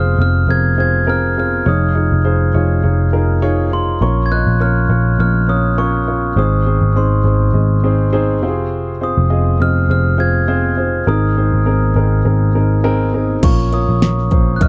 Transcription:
Already playing: picked electric bass F1, upright piano C3 C4 F4 G#4 C5, glockenspiel F6
0.19 picked electric bass F1, upright piano C4 F4 G#4 C5, glockenspiel F6
0.48 picked electric bass F1, upright piano C4 F4 G#4 A#4, glockenspiel G#6
0.78 upright piano C4 F4 G#4 C5, glockenspiel G#6
1.07 upright piano C4 F4 G#4 A#4, glockenspiel F6
1.37 upright piano C4 F4 G#4 C5, glockenspiel F6
1.66 picked electric bass F1, upright piano F3 D#4 F4 G#4 C#5, glockenspiel D#6
1.95 upright piano D#4 F4 G#4 C#5
2.12 picked electric bass F1
2.25 upright piano D#4 F4 G#4 C5
2.54 picked electric bass F1, upright piano D#4 F4 G#4 C#5
2.83 picked electric bass F1, upright piano D#4 F4 G#4 C#5
3.13 upright piano D#4 F4 G#4 A#4
3.42 upright piano D#4 F4 G#4 C#5
3.72 upright piano D#4 F4 G#4 C#5, glockenspiel C6
4.01 picked electric bass A#1, upright piano A#2 F3 C#4 F4 A#4 C#5, glockenspiel C#6
4.26 glockenspiel G#6
4.31 upright piano C#4 F4 A#4 D#5, glockenspiel F#6
4.47 picked electric bass A#1
4.60 upright piano C#4 F4 A#4 C#5, glockenspiel F6
4.89 picked electric bass A#1, upright piano C#4 F4 A#4 C#5
5.19 picked electric bass A#1, upright piano C#4 F4 A#4 C#5, glockenspiel F6
5.48 upright piano C#4 F4 A#4 C#5, glockenspiel D#6
5.78 upright piano C#4 F4 A#4 C#5, glockenspiel C#6
6.08 upright piano C#4 F4 A#4 C#5
6.36 picked electric bass G#1, upright piano G#2 D#3 C4 D#4 G#4 C5, glockenspiel D#6
6.66 upright piano C4 D#4 G#4 C5
6.82 picked electric bass G#1
6.96 upright piano C4 D#4 G#4 C5, glockenspiel C6
7.24 picked electric bass G#1, upright piano C4 D#4 G#4 C5
7.54 picked electric bass G#1, upright piano C4 D#4 G#4 D#5
7.84 upright piano C4 D#4 G#4 C5
8.12 upright piano C4 D#4 G#4 C5
8.42 picked electric bass F1, upright piano C3 C4 F4 F#4 C5
8.49 upright piano G#4
9.01 upright piano C4 F4 G#4 C5, glockenspiel D#6
9.18 picked electric bass F1
9.30 upright piano C4 F4 G#4 D#5
9.60 picked electric bass F1, upright piano C4 F4 G#4 D#5, glockenspiel F6
9.89 picked electric bass F1, upright piano C4 F4 G#4 C5, glockenspiel F6
10.18 upright piano C4 F4 G#4 C5, glockenspiel G#6
10.48 upright piano C4 F4 G#4 C5
10.77 upright piano C4 F4 G#4 C5
11.07 picked electric bass G#1, upright piano G#2 D#3 C4 D#4 G#4 A#4, glockenspiel D#6
11.37 upright piano C4 D#4 G#4 C5
11.53 picked electric bass G#1
11.66 upright piano C4 D#4 G#4 A#4
11.96 picked electric bass G#1, upright piano C4 D#4 G#4 A#4
12.25 picked electric bass G#1, upright piano C4 D#4 G#4 A#4
12.55 upright piano C4 D#4 G#4 A#4
12.84 upright piano C4 D#4 G#4 A#4 G#5
13.14 upright piano C4 D#4 G#4 A#4
13.43 picked electric bass A#1, upright piano A#2 F3 C#4 F4 A#4 C#5, glockenspiel C#6, kick, closed hi-hat, crash
13.72 upright piano C#4 F4 A#4 C#5, glockenspiel D#6, closed hi-hat
13.89 picked electric bass A#1
14.02 upright piano C#4 F4 A#4 C#5, snare, closed hi-hat
14.19 snare
14.31 picked electric bass A#1, upright piano C#4 F4 A#4 C5, kick, closed hi-hat
14.56 glockenspiel F#6
14.61 picked electric bass A#1, upright piano C#4 F4 A#4 D#5, glockenspiel F6, kick, closed hi-hat

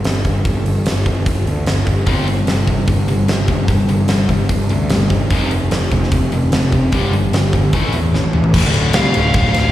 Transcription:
0.04 picked electric bass G1, snare, open hi-hat
0.25 picked electric bass G1, kick, open hi-hat
0.45 picked electric bass G1, kick, open hi-hat
0.66 picked electric bass G1, open hi-hat
0.86 picked electric bass G1, snare, open hi-hat
1.06 picked electric bass G1, kick, open hi-hat
1.26 picked electric bass G1, kick, open hi-hat
1.46 picked electric bass D2, open hi-hat
1.66 picked electric bass G1, snare, open hi-hat
1.87 picked electric bass G1, kick, open hi-hat
2.07 picked electric bass G1, overdriven electric guitar C3 G3 C4, kick, open hi-hat
2.27 overdriven electric guitar C3 G3, open hi-hat
2.47 picked electric bass G1, overdriven electric guitar C3 G3, snare, open hi-hat
2.67 picked electric bass G1, overdriven electric guitar C3 G3, kick, open hi-hat
2.88 picked electric bass G1, overdriven electric guitar C3 G3, kick, open hi-hat
3.08 overdriven electric guitar C3 G3, open hi-hat
3.28 picked electric bass G1, overdriven electric guitar C3 G3, snare, open hi-hat
3.48 picked electric bass G1, overdriven electric guitar C3 G3, kick, open hi-hat
3.68 picked electric bass G1, overdriven electric guitar C3 G3, kick, open hi-hat
3.89 picked electric bass G1, overdriven electric guitar C3 G3, open hi-hat
4.08 picked electric bass G1, overdriven electric guitar C3 G3, snare, open hi-hat
4.29 picked electric bass G1, overdriven electric guitar C3 G3, kick, open hi-hat
4.49 picked electric bass G1, overdriven electric guitar C3 G3, kick, open hi-hat
4.69 picked electric bass D2, overdriven electric guitar C3 G3, open hi-hat
4.90 picked electric bass G1, overdriven electric guitar C3 G3, snare, open hi-hat
5.10 picked electric bass G1, overdriven electric guitar C3 G3, kick, open hi-hat
5.30 picked electric bass F1, overdriven electric guitar F2 C3 F3, kick, open hi-hat
5.51 overdriven electric guitar F2 C3, open hi-hat
5.71 picked electric bass F1, overdriven electric guitar F2 C3, snare, open hi-hat
5.91 picked electric bass F1, overdriven electric guitar F2 C3, kick, open hi-hat
6.03 snare
6.12 picked electric bass F1, overdriven electric guitar F2 C3, kick, open hi-hat
6.32 overdriven electric guitar F2 C3, open hi-hat
6.52 picked electric bass F1, overdriven electric guitar F2 C3, snare, open hi-hat
6.72 picked electric bass F1, overdriven electric guitar F2 C3, kick, open hi-hat
6.92 picked electric bass G1, overdriven electric guitar G2 D3 G3, kick, open hi-hat
7.13 picked electric bass G1, overdriven electric guitar G2 D3, open hi-hat
7.32 picked electric bass G1, overdriven electric guitar G2 D3, snare, open hi-hat
7.53 picked electric bass G1, overdriven electric guitar G2 D3, kick, open hi-hat
7.73 picked electric bass A1, overdriven electric guitar A2 E3 A3, kick, open hi-hat
7.93 picked electric bass E2, overdriven electric guitar A2 E3, open hi-hat
8.14 picked electric bass A1, overdriven electric guitar A2 E3, snare
8.24 high tom
8.33 picked electric bass A1, overdriven electric guitar A2 E3, mid tom
8.44 floor tom
8.54 picked electric bass D1, overdriven electric guitar D2 A2 D3, kick, crash
8.74 picked electric bass D1, ride
8.93 picked electric bass C2, lead electric guitar F5, snare, ride
9.14 picked electric bass D1, ride
9.34 picked electric bass D1, lead electric guitar F5, kick, ride
9.54 picked electric bass D1, snare, ride

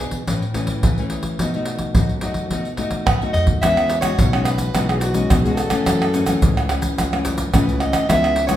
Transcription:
Already playing: nylon-string guitar B2 B3
0.00 nylon-string guitar D4 G#4
0.11 pandeiro, surdo
0.27 nylon-string guitar A2 E3 A3 C#4, pandeiro, surdo
0.42 pandeiro
0.54 nylon-string guitar E3 A3 C#4, pandeiro, surdo
0.67 pandeiro, surdo
0.83 nylon-string guitar E3, pandeiro, surdo
0.98 nylon-string guitar E3 A3 C#4, pandeiro
1.10 pandeiro
1.23 pandeiro, surdo
1.39 nylon-string guitar B2 A3 D#4 F#4, pandeiro, surdo
1.54 nylon-string guitar A3 D#4 F#4, pandeiro
1.65 pandeiro
1.78 pandeiro, surdo
1.95 nylon-string guitar F#2 A3 D#4 F#4, pandeiro, surdo
2.09 pandeiro
2.21 nylon-string guitar A3 D#4 F#4, pandeiro
2.34 pandeiro, surdo
2.51 nylon-string guitar B2 A3 D#4 F#4, pandeiro, surdo
2.65 pandeiro
2.77 nylon-string guitar A3 D#4 F#4, pandeiro, surdo
2.91 pandeiro, surdo
3.06 nylon-string guitar F#2, soprano saxophone B4, pandeiro, tamborim, surdo
3.22 nylon-string guitar A3 D#4 F#4, pandeiro
3.33 soprano saxophone D#5, surdo, pandeiro
3.47 pandeiro, surdo
3.61 fingered electric bass E2, nylon-string guitar E3 G#3 C#4 F#4, soprano saxophone E5, pandeiro, tamborim, shaker, surdo
3.77 pandeiro, tamborim, shaker
3.89 pandeiro, shaker
4.01 nylon-string guitar G#3 C#4 F#4, soprano saxophone C#5, pandeiro, tamborim, shaker, surdo
4.18 fingered electric bass B1, nylon-string guitar B2, pandeiro, shaker, surdo
4.33 nylon-string guitar G#3 C#4 F#4, pandeiro, tamborim, shaker
4.44 soprano saxophone B4, pandeiro, tamborim, shaker
4.58 pandeiro, shaker, surdo
4.75 fingered electric bass B1, nylon-string guitar E3 G#3 C#4 F#4, pandeiro, tamborim, shaker, surdo
4.88 soprano saxophone G#4, pandeiro, tamborim, shaker
5.00 soprano saxophone F#4, pandeiro, shaker
5.14 nylon-string guitar G#3 C#4 F#4, pandeiro, shaker, surdo
5.30 fingered electric bass B1, nylon-string guitar B2, pandeiro, tamborim, shaker, surdo
5.43 fingered electric bass E2, nylon-string guitar G#3 C#4 F#4, soprano saxophone G#4, pandeiro, shaker
5.55 soprano saxophone A4, pandeiro, tamborim, shaker
5.70 nylon-string guitar E3 A3 C#4, pandeiro, tamborim, shaker, surdo
5.86 fingered electric bass F#2, nylon-string guitar F#2, pandeiro, tamborim, shaker, surdo
6.02 pandeiro, tamborim, shaker
6.14 nylon-string guitar E3 A3 C#4, pandeiro, shaker
6.26 nylon-string guitar E3 A3 C#4, pandeiro, tamborim, shaker, surdo
6.42 fingered electric bass C#2, nylon-string guitar C#3, pandeiro, shaker, surdo
6.57 pandeiro, tamborim, shaker
6.69 nylon-string guitar E3 A3 C#4, pandeiro, tamborim, shaker
6.82 pandeiro, shaker, surdo
6.97 fingered electric bass C#2, nylon-string guitar F#2, pandeiro, tamborim, shaker, surdo
7.12 nylon-string guitar E3 A3 C#4, pandeiro, tamborim, shaker
7.25 pandeiro, shaker, surdo
7.38 pandeiro, shaker, surdo
7.53 fingered electric bass C#2, nylon-string guitar C#3 E3 A3 C#4, soprano saxophone B4, pandeiro, tamborim, shaker, surdo
7.68 fingered electric bass C#2, pandeiro, shaker
7.80 soprano saxophone D#5, pandeiro, tamborim
7.93 pandeiro, tamborim, shaker, surdo
8.08 fingered electric bass C#2, nylon-string guitar C#3 G#3 B3 E4, soprano saxophone E5, pandeiro, tamborim, shaker, surdo
8.24 pandeiro, tamborim, shaker
8.36 pandeiro
8.47 nylon-string guitar G#3 B3 E4, soprano saxophone C#5, pandeiro, tamborim, shaker, surdo

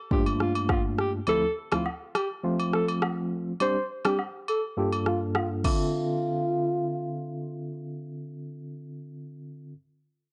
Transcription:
0.11 tine electric piano G2 A3 A#3 D4 F4, alto saxophone G4, kick
0.26 high agogo
0.40 alto saxophone F4, cross-stick
0.55 high agogo
0.69 alto saxophone F4, kick, cross-stick, low woodblock
0.98 alto saxophone G4, cross-stick
1.27 tine electric piano D2 F3 A3 C4 E4, alto saxophone A4, high agogo
1.72 tine electric piano D2 F3 A3 C4 E4, alto saxophone F4, cross-stick, high agogo
1.86 low woodblock
2.15 alto saxophone G4, cross-stick, high agogo
2.44 tine electric piano F3 A3 C4 F4
2.60 high agogo
2.73 alto saxophone A4, cross-stick
2.88 high agogo
3.02 cross-stick, low woodblock
3.60 tine electric piano G3 C4 D4 G4, alto saxophone C5, high agogo
4.05 tine electric piano G3 C4 D4 G4, alto saxophone G4, cross-stick, high agogo
4.19 low woodblock
4.48 alto saxophone A4, high agogo
4.77 tine electric piano G2 A#3 D4 F4 A4, alto saxophone G4
4.93 high agogo
5.06 alto saxophone F4, cross-stick
5.35 alto saxophone F4, cross-stick, low woodblock
5.64 tine electric piano D3 C4 F4 A4 E5, alto saxophone F4, kick, crash, high agogo

